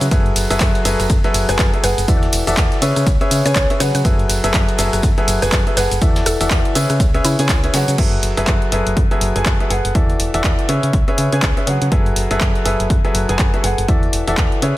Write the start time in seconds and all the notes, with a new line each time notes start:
0.01 C#3, closed hi-hat, tambourine, shaker
0.11 F#2 F#3 G#4 A4 B4 E5, kick, closed hi-hat, tambourine, shaker
0.26 closed hi-hat
0.36 F#1, open hi-hat, ride, tambourine, shaker
0.50 F#1 F#3 G#4 A4 B4 E5, closed hi-hat, tambourine, shaker
0.60 F#2, kick, snare, clap, closed hi-hat, tambourine, shaker
0.75 closed hi-hat
0.85 F#1 F#3 G#4 A4 B4 E5, open hi-hat, ride, tambourine, shaker
1.00 F#1, cross-stick, snare, closed hi-hat, tambourine, shaker
1.09 F#2, kick, closed hi-hat, tambourine, shaker
1.24 F#3 G#4 A4 B4 E5, snare, closed hi-hat
1.34 F#1, open hi-hat, ride, tambourine, shaker
1.49 F#1 F#3 G#4 A4 B4 G#5, closed hi-hat, tambourine, shaker
1.59 F#2, kick, snare, clap, closed hi-hat, tambourine, shaker
1.73 F#3 G#4 A4 B4 E5, closed hi-hat
1.83 F#1 G#4 A4 B4 F#5, open hi-hat, ride, tambourine, shaker
1.98 F#1, closed hi-hat, tambourine, shaker
2.08 E2 E3 F#4 A4 D5 E5, kick, closed hi-hat, tambourine, shaker
2.23 snare, closed hi-hat
2.32 E1, open hi-hat, ride, tambourine, shaker
2.47 E1 E3 F#4 A4 D5 E5, closed hi-hat, tambourine, shaker
2.57 E2, kick, snare, clap, closed hi-hat, tambourine, shaker
2.72 snare, closed hi-hat
2.82 C#3 C#4 G#4 B4 C#5 E5, open hi-hat, ride, tambourine, shaker
2.96 C#3, cross-stick, closed hi-hat, tambourine, shaker
3.06 C#2, kick, closed hi-hat, tambourine, shaker
3.21 C#4 G#4 B4 C#5 E5, closed hi-hat
3.31 C#3, open hi-hat, ride, tambourine, shaker
3.46 C#3 C#4 G#4 B4 C#5 G#5, closed hi-hat, tambourine, shaker
3.55 C#2 C#5, kick, snare, clap, closed hi-hat, tambourine, shaker
3.70 C#4 G#4 B4 C#5 E5, closed hi-hat
3.80 C#3 F#3 G#4 B4 C#5 F#5, snare, open hi-hat, ride, tambourine, shaker
3.95 C#3 B4, closed hi-hat, tambourine, shaker
4.05 F#2 F#3 G#4 A4 B4 E5, kick, closed hi-hat, tambourine, shaker
4.19 closed hi-hat
4.29 F#1, open hi-hat, ride, tambourine, shaker
4.44 F#1 F#3 G#4 A4 B4 E5, closed hi-hat, tambourine, shaker
4.54 F#2, kick, snare, clap, closed hi-hat, tambourine, shaker
4.69 closed hi-hat
4.78 F#1 F#3 G#4 A4 B4 E5, open hi-hat, ride, tambourine, shaker
4.93 F#1, cross-stick, closed hi-hat, tambourine, shaker
5.02 F#2, kick, closed hi-hat, tambourine, shaker
5.18 F#3 G#4 A4 B4 E5, closed hi-hat
5.28 F#1, open hi-hat, ride, tambourine, shaker
5.42 F#1 F#3 G#4 A4 B4 G#5, closed hi-hat, tambourine, shaker
5.52 F#2, kick, snare, clap, closed hi-hat, tambourine, shaker
5.67 F#3 G#4 A4 B4 E5, closed hi-hat
5.77 F#1 G#4 A4 B4 F#5, snare, open hi-hat, ride, tambourine, shaker
5.91 F#1, closed hi-hat, tambourine, shaker
6.01 E2 E3 F#4 A4 D5 E5, kick, closed hi-hat, tambourine, shaker
6.16 snare, closed hi-hat, tambourine
6.26 E1 A4, cross-stick, open hi-hat, ride, tambourine, shaker
6.41 E1 E3 F#4 A4 D5 E5, closed hi-hat, tambourine, shaker
6.50 E2, kick, cross-stick, snare, clap, closed hi-hat, tambourine, shaker
6.65 closed hi-hat
6.75 C#3 C#4 G#4 B4 C#5 E5, open hi-hat, ride, tambourine, shaker
6.89 C#3, cross-stick, closed hi-hat, tambourine, shaker
7.00 C#2, kick, closed hi-hat, tambourine, shaker
7.14 C#4 G#4 B4 C#5 E5, closed hi-hat
7.25 C#3 E4, open hi-hat, ride, tambourine, shaker
7.39 C#3 C#4 G#4 B4 C#5 G#5, closed hi-hat, tambourine, shaker
7.49 C#2, kick, snare, clap, closed hi-hat, tambourine, shaker
7.64 C#4 G#4 B4 C#5 E5, closed hi-hat
7.74 C#3 F#3 G#4 B4 C#5 F#5, snare, open hi-hat, ride, tambourine, shaker
7.88 C#3, closed hi-hat, tambourine, shaker
7.98 F#2 F#3 G#4 A4 B4 E5, kick, closed hi-hat, crash
8.13 closed hi-hat
8.23 F#1, open hi-hat
8.37 F#1 F#3 G#4 A4 B4 E5, closed hi-hat
8.47 F#2, kick, clap, closed hi-hat
8.62 closed hi-hat
8.72 F#1 F#3 G#4 A4 B4 E5, open hi-hat
8.87 F#1, closed hi-hat
8.97 F#2, kick, closed hi-hat
9.11 F#3 G#4 A4 B4 E5, closed hi-hat
9.21 F#1, open hi-hat
9.36 F#1 F#3 G#4 A4 B4 G#5, closed hi-hat
9.46 F#2, kick, clap, closed hi-hat
9.60 F#3 G#4 A4 B4 E5, closed hi-hat
9.70 F#1 G#4 A4 B4 F#5, open hi-hat
9.85 F#1, closed hi-hat
9.95 E2 E3 F#4 A4 D5 E5, kick, closed hi-hat
10.10 closed hi-hat
10.20 E1, open hi-hat
10.34 E1 E3 F#4 A4 D5 E5, closed hi-hat
10.44 E2, kick, clap, closed hi-hat
10.59 closed hi-hat
10.69 C#3 C#4 G#4 B4 C#5 E5, open hi-hat
10.83 C#3, closed hi-hat
10.93 C#2, kick, closed hi-hat
11.08 C#4 G#4 B4 C#5 E5, closed hi-hat
11.18 C#3, open hi-hat
11.32 C#3 C#4 G#4 B4 C#5 G#5, closed hi-hat
11.42 C#2, kick, clap, closed hi-hat
11.57 C#4 G#4 B4 C#5 E5, closed hi-hat
11.67 C#3 F#3 G#4 B4 C#5 F#5, open hi-hat
11.82 C#3, closed hi-hat
11.92 F#2 F#3 G#4 A4 B4 E5, kick, closed hi-hat
12.06 closed hi-hat
12.16 F#1, open hi-hat
12.31 F#1 F#3 G#4 A4 B4 E5, closed hi-hat
12.41 F#2, kick, clap, closed hi-hat
12.55 closed hi-hat
12.65 F#1 F#3 G#4 A4 B4 E5, open hi-hat
12.80 F#1, closed hi-hat
12.90 F#2, kick, closed hi-hat
13.05 F#3 G#4 A4 B4 E5, closed hi-hat
13.15 F#1, open hi-hat
13.29 F#1 F#3 G#4 A4 B4 G#5, closed hi-hat
13.39 F#2, kick, clap, closed hi-hat
13.54 F#3 G#4 A4 B4 E5, closed hi-hat
13.64 F#1 G#4 A4 B4 F#5, open hi-hat
13.78 F#1, closed hi-hat
13.88 E2 E3 F#4 A4 D5 E5, kick, closed hi-hat
14.03 closed hi-hat
14.13 E1, open hi-hat
14.27 E1 E3 F#4 A4 D5 E5, closed hi-hat
14.37 E2, kick, clap, closed hi-hat
14.52 closed hi-hat
14.62 C#3 C#4 G#4 B4 C#5 E5, open hi-hat